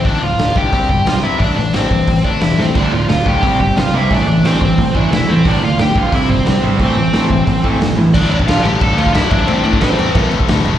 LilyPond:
<<
  \new Staff \with { instrumentName = "Lead electric guitar" } { \time 4/4 \key d \minor \tempo 4 = 178 <d' d''>8 <f' f''>4 <g' g''>4 <g' g''>8 <f' f''>8 <e' e''>8 | <d' d''>8 <d' d''>8 <c' c''>4. <d' d''>8 <e' e''>8 <c' c''>8 | <d' d''>8 <f' f''>8 <f' f''>8 <g' g''>4 <g' g''>8 <f' f''>8 <e' e''>8 | <d' d''>4 <c' c''>4. <d' d''>8 <e' e''>8 <c' c''>8 |
<d' d''>8 <f' f''>8 <g' g''>8 <f' f''>8 <e' e''>8 <c' c''>4 r8 | <c' c''>2. r4 | <d' d''>8 <d' d''>8 <f' f''>8 <g' g''>8 <a' a''>8 <f' f''>8 <e' e''>8 <d' d''>8 | <c' c''>8 <d' d''>8 <c' c''>4. r4. | }
  \new Staff \with { instrumentName = "Distorted electric guitar" } { \clef bass \time 4/4 \key d \minor <d, a, d>8 <d, a,>8 <d, a,>8 <d, a, d>8 <c g c'>8 <c g>8 <c g>8 <c g c'>8 | <a, e a>8 <a, e>8 <a, e a>8 <a, e>8 <a, e>8 <a, e a>8 <a, e>8 <a, e>8 | <d, a, d>8 <d, a,>8 <d, a,>8 <d, a, d>8 <c g c'>8 <c g>8 <c g>8 <c g c'>8 | <a, e a>8 <a, e>8 <a, e a>8 <a, e>8 <a, e>8 <a, e a>8 <a, e>8 <a, e>8 |
<d, a, d>8 <d, a,>8 <d, a,>8 <d, a, d>8 <c g c'>8 <c g>8 <c g>8 <c g c'>8 | <a, e a>8 <a, e>8 <a, e a>8 <a, e>8 <a, e>8 <a, e a>8 <a, e>8 <a, e>8 | <d, a, d>8 <d, a, d>8 <d, a, d>8 <d, a, d>8 <d, a, d>8 <d, a, d>8 <d, a, d>8 <a, e a>8 | <a, e a>8 <a, e a>8 <a, e a>8 <a, e a>8 <a, e a>8 <a, e a>8 <a, e a>8 <a, e a>8 | }
  \new Staff \with { instrumentName = "Distorted electric guitar" } { \clef bass \time 4/4 \key d \minor r1 | r1 | <d, a, d>8 <d, a,>8 <d, a,>8 <d, a, d>8 <c g c'>8 <c g>8 <c g>8 <c g c'>8 | <a, e a>8 <a, e>8 <a, e a>8 <a, e>8 <a, e>8 <a, e a>8 <a, e>8 <a, e>8 |
<d, a, d>8 <d, a,>8 <d, a,>8 <d, a, d>8 <c g c'>8 <c g>8 <c g>8 <c g c'>8 | <a, e a>8 <a, e>8 <a, e a>8 <a, e>8 <a, e>8 <a, e a>8 <a, e>8 <a, e>8 | r1 | r1 | }
  \new Staff \with { instrumentName = "Picked electric bass" } { \clef bass \time 4/4 \key d \minor d,,8 d,,8 d,,8 d,,8 c,8 g,,8 c,8 c,8 | a,,8 a,,8 a,,8 a,,8 a,,8 a,,8 e,,8 a,8 | d,,8 d,,8 d,,8 d,,8 c,8 g,,8 c,8 c,8 | a,,8 a,,8 a,,8 a,,8 a,,8 a,,8 e,,8 a,8 |
d,,8 d,,8 d,,8 d,,8 c,8 g,,8 c,8 gis,,8 | a,,8 a,,8 a,,8 a,,8 a,,8 a,,8 e,,8 a,8 | d,,8 a,,8 d,,8 a,,8 a,,8 d,8 d,,8 a,,8 | a,,8 a,8 a,,8 e,8 a,,8 a,,8 d,8 e,,8 | }
  \new DrumStaff \with { instrumentName = "Drums" } \drummode { \time 4/4 <hho bd>4 <hho sn>8 bd8 <hho bd>8 bd8 <hho sn>4 | <hho bd>4 <hho sn>8 bd8 <hho bd>8 bd8 <hho sn>8 sn8 | <cymc hho bd>4 <hho sn>8 bd8 <hho bd>8 bd8 <hho sn>4 | <hho bd>4 <hho sn>8 bd8 <hho bd>8 bd8 <hho sn>4 |
<hho bd>4 <hho sn>8 bd8 <hho bd>8 bd8 <hho sn>4 | <hho bd>4 <hho sn>8 bd8 <hho bd>8 bd8 <hho sn>4 | <cymc bd>8 cymc16 bd16 <cymc sn>8 cymc8 <cymc bd>8 cymc16 bd16 <cymc sn>8 <cymc bd>8 | cymc8 cymc16 bd16 <cymc sn>8 cymc8 <cymc bd>8 cymc16 bd16 <cymc sn>8 cymc8 | }
>>